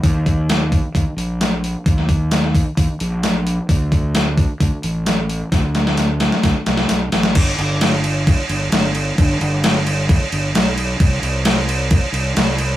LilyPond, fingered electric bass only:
\new Staff \with { instrumentName = "Fingered electric bass" } { \clef bass \time 4/4 \key d \dorian \tempo 4 = 131 ees,2 ees,16 r16 bes,,4. | ees,2 ees,16 r16 bes,,4. | d,2 d,16 r16 a,,4. | d,2 d,16 r16 c,8 b,,8 a,,8 |
g,,8 g,,2 g,,8 g,,4 | g,,8 g,,2 g,,8 b,,4 | c,8 c,2 c,8 c,4 | }